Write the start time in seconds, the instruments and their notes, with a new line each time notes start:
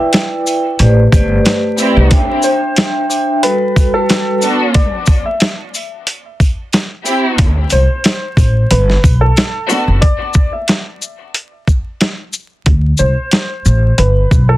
Already playing: vibraphone E4 B4 D5 G5, upright piano E5
0.13 snare, closed hi-hat, sleigh bells
0.47 shaker, sleigh bells
0.79 upright bass A1, vibraphone A3 G4 B4 C5 D5, closed hi-hat, sleigh bells
1.12 upright bass G1, vibraphone A3 G4 B4 C5 D5, kick, shaker, sleigh bells
1.44 vibraphone A3 G4 B4 C5 D5, snare, closed hi-hat, sleigh bells
1.76 vibraphone A3 G4 B4 C5 D5, string section C4 E4 G4, shaker, sleigh bells
1.96 upright bass C2
2.10 vibraphone D4 C5 E5 G5, kick, closed hi-hat, sleigh bells
2.43 upright piano C5, shaker, sleigh bells
2.76 snare, closed hi-hat, sleigh bells
3.09 vibraphone D4 C5 E5 G5, shaker, sleigh bells
3.43 vibraphone G3 F#4 A4 B4, upright piano B4, closed hi-hat, sleigh bells
3.76 kick, shaker, sleigh bells
3.94 vibraphone G3 F#4 A4 B4, upright piano A4
4.09 snare, closed hi-hat, sleigh bells
4.42 string section B3 D4 F#4, shaker, sleigh bells
4.74 upright piano D5, kick, closed hi-hat, sleigh bells
5.06 kick, shaker, sleigh bells
5.26 upright piano E5
5.40 snare, closed hi-hat, sleigh bells
5.74 shaker, sleigh bells
6.07 closed hi-hat, sleigh bells
6.40 kick, shaker, sleigh bells
6.73 snare, closed hi-hat, sleigh bells
7.05 string section C4 E4 G4, shaker, sleigh bells
7.38 upright bass D2, kick, closed hi-hat, sleigh bells
7.70 upright bass C2, upright piano C5, closed hi-hat, shaker, sleigh bells
8.04 snare, closed hi-hat, sleigh bells
8.37 upright bass A1, kick, shaker, sleigh bells
8.71 upright bass G1, upright piano B4, closed hi-hat, sleigh bells
8.90 snare
9.04 upright bass B1, kick, shaker, sleigh bells
9.21 upright piano A4
9.36 snare, closed hi-hat, sleigh bells
9.69 string section B3 D4 F#4, shaker, sleigh bells
9.88 upright bass F#1
10.02 upright piano D5, kick, closed hi-hat
10.34 kick, shaker
10.53 upright piano E5
10.68 snare, closed hi-hat
11.02 shaker
11.34 closed hi-hat
11.68 kick, shaker
12.01 snare, closed hi-hat
12.33 shaker
12.66 upright bass D2, kick, closed hi-hat
12.98 upright bass C2, upright piano C5, shaker
13.31 snare, closed hi-hat
13.65 upright bass A1, shaker
13.98 upright bass G1, upright piano B4, closed hi-hat
14.31 upright bass B1, kick, shaker
14.49 upright piano A4